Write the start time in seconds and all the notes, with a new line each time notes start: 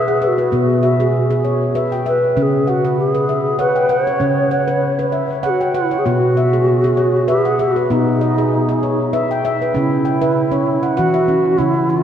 Already playing: G#4 B4 E5
0.08 F#5
0.22 G#4 E5
0.27 F#4
0.38 B4
0.52 B2 B3
0.83 E5
1.00 G#4
1.30 G#4
1.44 C#5
1.75 B4 E5
1.92 G5
2.06 B4 E5
2.37 C#3 C#4 B4
2.42 G#4
2.67 F#4 F#5
2.85 B4
2.99 G#4
3.15 B4
3.29 E5
3.59 B4 C#5 F#5
3.76 G5
3.89 C#5 F#5
4.07 C#5
4.20 C#3 C#4
4.51 F#5
4.68 B4
4.99 B4
5.12 E5
5.43 G#4 C#5 F#5
5.50 F#4
5.61 G5
5.75 E4 F#5
5.91 C#5
5.98 G#4
6.05 B2 B3 F#4
6.37 E5
6.53 G#4
6.84 G#4
6.97 C#5
7.28 G#4 B4 E5
7.45 F#5
7.59 F#4 E5
7.76 B4
7.90 B2 B3 D#4
8.21 D#5
8.38 G#4
8.69 G#4
8.83 C#5
9.13 B4 E5
9.31 G5
9.45 E5
9.62 B4
9.74 C#3 C#4 E4
10.05 G5
10.22 B4 E5
10.51 C#4 C#5
10.83 F#5
10.97 E3 F#4 F#5
11.14 E5
11.28 C#4
11.58 C#3 C#4 E4
11.90 F#4